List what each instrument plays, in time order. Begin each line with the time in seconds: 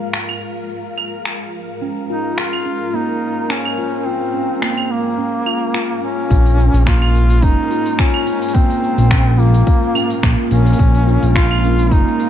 Already playing: ambient pad G#3 F4 A#4 F5
0.13 finger snap
0.29 claves
0.97 claves
1.25 finger snap
1.82 steel tongue drum C#4
2.10 duduk D#4, steel tongue drum F4
2.38 duduk F4, finger snap
2.53 claves
2.66 steel tongue drum C#4
2.94 steel tongue drum A#3, duduk D#4
3.50 steel tongue drum C#4, duduk C#4, finger snap
3.65 claves
3.78 steel tongue drum F4
4.06 duduk C4, steel tongue drum F4
4.34 steel tongue drum C#4
4.62 steel tongue drum A#3, duduk C4, finger snap
4.77 claves
4.91 duduk A#3
5.18 steel tongue drum C#4
5.46 steel tongue drum F4, claves
5.74 steel tongue drum F4, finger snap
6.02 steel tongue drum C#4, duduk C#4
6.30 analog synth bass A#1, steel tongue drum F4, kick, open hi-hat, shaker
6.46 open hi-hat, shaker
6.58 steel tongue drum C#4, shaker
6.66 ambient pad A#3
6.74 analog synth bass A#1, open hi-hat, shaker
6.78 ambient pad F4
6.87 steel tongue drum A#3, duduk F4, finger snap, kick, open hi-hat, shaker
7.02 claves, shaker
7.15 shaker
7.30 open hi-hat, shaker
7.42 analog synth bass F1, steel tongue drum C#4, duduk D#4, kick, open hi-hat, shaker
7.59 shaker
7.71 steel tongue drum F4, open hi-hat, shaker
7.75 ambient pad F5
7.86 open hi-hat, shaker
7.98 duduk C#4, steel tongue drum F4, finger snap, kick, open hi-hat, shaker
8.14 claves, shaker
8.26 steel tongue drum C#4, open hi-hat, shaker
8.42 open hi-hat, shaker
8.48 open hi-hat
8.54 steel tongue drum A#3, duduk C4, kick, open hi-hat, shaker
8.70 open hi-hat, shaker
8.84 shaker
8.98 analog synth bass A#1, open hi-hat, shaker
9.11 steel tongue drum C#4, finger snap, kick, open hi-hat, shaker
9.27 shaker
9.39 duduk A#3, steel tongue drum F4, shaker
9.54 open hi-hat, shaker
9.67 steel tongue drum F4, kick, open hi-hat, shaker
9.83 shaker
9.95 steel tongue drum C#4, open hi-hat, claves, shaker
10.10 open hi-hat, shaker
10.23 analog synth bass A#1, steel tongue drum A#3, finger snap, kick, open hi-hat, shaker
10.39 shaker
10.51 analog synth bass A#1, duduk C#4, open hi-hat, shaker
10.66 open hi-hat, shaker
10.73 open hi-hat
10.79 analog synth bass A#1, steel tongue drum C#4, kick, open hi-hat, shaker
10.95 open hi-hat, shaker
11.07 steel tongue drum F4, shaker
11.23 analog synth bass A#1, open hi-hat, shaker
11.35 steel tongue drum F4, duduk F4, finger snap, kick, open hi-hat, shaker
11.51 claves, shaker
11.63 steel tongue drum C#4, shaker
11.79 open hi-hat, shaker
11.91 analog synth bass F1, steel tongue drum A#3, duduk D#4, kick, open hi-hat, shaker
12.08 shaker
12.20 open hi-hat, shaker